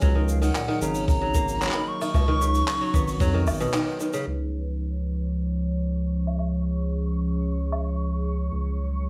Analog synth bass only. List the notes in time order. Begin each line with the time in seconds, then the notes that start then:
0.02 C#2
0.82 G#1
2.14 C#2
2.94 G#1
3.20 F2
3.47 G#1
4.27 C#2
8.52 C#2